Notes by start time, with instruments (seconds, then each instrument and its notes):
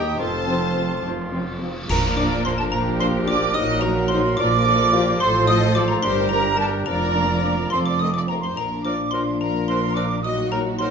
Already playing: bassoon D#4, oboe G4, violin section A#4 G5, flute section D#6
0.19 double bass section F1, cello section F2, viola section F3 C4, bassoon C4, oboe F4, clarinet A4, violin section C5 A5, flute section C6
0.47 french horn section F3 C4, viola section F3 C4
0.75 french horn section F3 C4, viola section F3 C4
1.04 double bass section F1, cello section F2, viola section F3 C4
1.32 french horn section F3 C4, viola section F3 C4
1.59 french horn section F3 C4
1.64 viola section F3 C4
1.89 double bass section A#1, cello section A#2, bassoon F3, clarinet D4, violin section F4 A#4, oboe A#4, viola section A#4, flute section A#5, xylophone A#5, concert bass drum, crash
2.04 violin section D4
2.17 french horn section F3 D4, violin section F4 D5, xylophone D6, flute section D6
2.32 violin section D4
2.44 french horn section F3 D4, violin section F4 C5, flute section C6, xylophone C6
2.58 violin section D4 A4, xylophone A5, flute section A5
2.71 double bass section A#1, cello section A#2, violin section F4 A#4, viola section G4, flute section A#5, xylophone A#5
2.86 violin section D4
2.99 french horn section F3 D4, violin section F4 C5, flute section C6, xylophone C6
3.15 violin section D4
3.26 french horn section F3 D4, violin section F4 D5, flute section D6, xylophone D6
3.40 violin section D4
3.54 double bass section A#1, cello section A#2, bassoon F#3, violin section D#4 D#5, clarinet D#4, viola section F#4, xylophone D#6, flute section D#6
3.69 violin section F#4
3.81 french horn section F#3 D#4, violin section D#4 A#4, xylophone A#5, flute section A#5
3.95 violin section F#4
4.08 violin section D#4 C5, french horn section D#4, xylophone C6, flute section C6
4.13 french horn section F#3
4.24 violin section F#4
4.37 double bass section A#1, cello section A#2, bassoon F3, violin section D4 D5, clarinet F4, viola section A#4, xylophone D6, flute section D6
4.51 violin section F4
4.64 french horn section F3 F4, violin section D4, viola section A4
4.79 violin section F4
4.93 french horn section F3 F4, violin section D4, viola section G4
5.07 violin section F4
5.20 double bass section A1, cello section A2, violin section A4 C5, viola section A4, oboe C5, xylophone C6, flute section C6
5.33 violin section F4
5.47 french horn section F3 F4, violin section A4 D#5, xylophone D#6, flute section D#6
5.62 violin section F4
5.75 french horn section F3 F4, violin section A4 D5, xylophone D6, flute section D6
5.88 violin section F4 A#4, xylophone A#5, flute section A#5
6.03 double bass section G1, cello section G2, bassoon G3, clarinet D4, violin section G4 C5, oboe G4, viola section A#4, xylophone C6, flute section C6
6.17 violin section D4
6.29 french horn section G3 D4, violin section G4 A#4, xylophone A#5, flute section A#5
6.44 violin section D4
6.57 french horn section G3 D4, violin section G4, xylophone A5, flute section A5
6.61 violin section A4
6.74 violin section D4
6.86 double bass section F1, cello section F2, bassoon F3, violin section F4 A#4, oboe A#4, viola section D5, xylophone A#5, flute section A#5
7.03 violin section D4
7.15 french horn section A#3 D4, violin section F4
7.31 violin section D4
7.43 french horn section A#3 D4, violin section F4
7.58 violin section D4
7.70 double bass section F1, cello section F2, clarinet C4, violin section F4 C5, oboe A4, xylophone C6, flute section C6
7.86 violin section C4, xylophone D6, flute section D6
7.90 violin section D5
7.99 french horn section A3 C4, violin section F4, flute section D#6, xylophone D#6
8.04 violin section D#5
8.14 violin section C4 D5, xylophone D6, flute section D6
8.28 french horn section A3 C4, violin section F4 A#4, flute section A#5, xylophone A#5
8.41 violin section C4 C5, flute section C6, xylophone C6
8.55 double bass section A#1, cello section A#2, french horn section F3 D4, violin section F4 A#4, flute section A#5, xylophone A#5
8.73 violin section D4
8.82 bassoon F3, clarinet D4, oboe A#4, flute section D6, xylophone D6
8.86 violin section F4 D5
9.00 violin section D4
9.11 bassoon F3, clarinet D4, violin section F4 C5, oboe A#4, xylophone C6, flute section C6
9.27 violin section D4
9.40 violin section F4 A#4, viola section A#4, flute section A#5, xylophone A#5
9.56 violin section D4
9.68 bassoon F3, clarinet D4, violin section F4 C5, oboe A#4, xylophone C6, flute section C6
9.83 violin section D4
9.95 bassoon F3, clarinet D4, violin section F4 D5, oboe A#4, flute section D6, xylophone D6
10.11 violin section D4
10.23 french horn section F#3 D#4, violin section D#4 D#5, viola section F#4, flute section D#6, xylophone D#6
10.39 violin section F#4
10.51 bassoon F#3, clarinet D#4, violin section D#4 A#4, oboe A#4, flute section A#5, xylophone A#5
10.66 violin section F#4
10.78 bassoon F#3, clarinet D#4, violin section D#4 C5, oboe A#4, flute section C6, xylophone C6